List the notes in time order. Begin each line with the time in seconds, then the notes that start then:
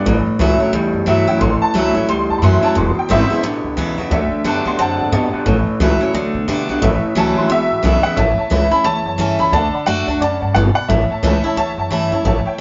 0.05 A1 A2 E3
0.26 muted upright bass stroke
0.39 C#2 A2 E3 F#3 A3 C#4 E4
0.59 A2 F#3 A3 C#4 E4, muted upright bass stroke
0.72 D2 E2 A2 G3
0.94 F#2
1.06 G2 A2 E3 F#3 A3 C#4 E4 E5
1.27 A2 F#3 C#4 E4 G5
1.39 A1 A2 E3 A3 C#4 E4 C6
1.61 A5, muted upright bass stroke
1.74 C#2 A2 E3 F#3 A3 C#4 E4
1.93 A1 A2 F#3 A3 C#4 E4
2.08 C#2 E2 A2 G3 C6
2.29 D2 A5
2.38 F#2 A2 E3 B5
2.43 F#3 A3 C#4 E4 C6
2.63 A2 F#3 C#4 E4 A5, muted upright bass stroke
2.75 E1 E2 B2 G#3 B3 E4 C6
2.97 G5, muted upright bass stroke
3.09 G#1 E2 C#3 E3 G#3 B3 E4 C5 E5
3.30 E2 C#3 G#3 B3 E4
3.43 A1 E2 B2 D3
3.64 C#2
3.77 D2 E2 C#3 E3 G#3 B3 E4
3.98 E2 C#3 B3 E4
4.10 D2 D3 F#3 A3 D5 E5
4.31 muted upright bass stroke
4.44 F#2 D3 A3 B3 D4 F#4 A5
4.65 D2 D3 B3 D4 F#4 C6
4.78 F#2 D3 C4 F#5 A5
4.99 G2
5.12 B2 D3 B3
5.33 D3 B3, muted upright bass stroke
5.46 A1 A2 E3 A3 C#4
5.67 muted upright bass stroke
5.80 C#2 A2 E3 F#3 A3 C#4 E4
6.01 A2 F#3 C#4 E4, muted upright bass stroke
6.13 D2 D3 F#3 A3 D4
6.34 B2
6.48 B2 D3 A3 B3 D4 F#4
6.69 B1 D3 B3 D4 F#4
6.81 A1 A2 E3 A3 C#4 E5
7.02 muted upright bass stroke
7.15 C#2 A2 E3 F#3 A3 C#4 E4 A5
7.36 D2 A2 F#3 C6
7.49 E1 E2 B2 E3 G#3 B3 E5
7.70 A1
7.83 B1 E2 C#3 E3 G#3 B3 E4
8.03 E2 C#3 B3 E4 F#5, muted upright bass stroke
8.16 A1 A2 C#5 E5 A5
8.37 C#5 E5 A5, muted upright bass stroke
8.50 C#2 E3 A3 C#4 E4 C#5 E5 B5
8.71 C#4 E4 C#5 E5 A5 B5
8.84 D2 E2 C#5 E5 A5
9.06 F#2 C#5 E5 A5
9.18 G2 E3 A3 C#4 E4 C#5 E5 A5
9.39 C#2 C#4 E4 C#5 E5 A5 B5
9.52 D2 D3 D5 F#5 A5
9.73 D5 F#5 B5, muted upright bass stroke
9.85 F#2 D3 A3 D4 F#4 D5 F#5 A5
10.07 D2 D4 F#4 D5 F#5 A5
10.20 F#2 C#3 D5 F#5 A5
10.41 G2 D5 F#5 A5
10.53 G1 B2 D5 F#5 A5
10.74 D5 F#5 B5, muted upright bass stroke
10.88 A1 A2 C#5 E5 A5
11.10 C#5 E5 A5, muted upright bass stroke
11.23 C#2 E3 A3 C#4 E4 C#5 E5 A5
11.43 C#4 E4 C#5 E5 A5, muted upright bass stroke
11.56 D2 E2 C#5 E5 A5
11.77 F#2 C#5 E5 A5
11.90 G2 E3 A3 C#4 E4 C#5 E5 A5
12.11 F#2 C#4 E4 C#5 E5 A5
12.24 A1 A2 C#5 E5 A5
12.45 C#5 E5 G5, muted upright bass stroke